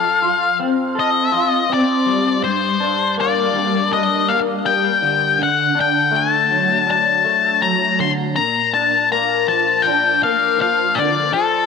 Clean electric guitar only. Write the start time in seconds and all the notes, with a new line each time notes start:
Already playing: F3 A4
0.22 F4
0.60 C4
0.95 A4
1.32 F4
1.69 C4
2.06 G3
2.42 G2
2.80 D4
3.17 A#3
3.54 G3
3.91 D4
4.28 A#3
4.66 G3
5.02 D3
5.39 D3
5.75 D4
6.11 A3
6.50 F#3
6.87 D4
7.24 A3
7.62 F#3
7.99 D3
8.37 A#2
8.74 D4
9.12 A#3
9.49 F3
9.87 D4
10.24 A#3
10.58 F3
10.96 D3
11.33 F3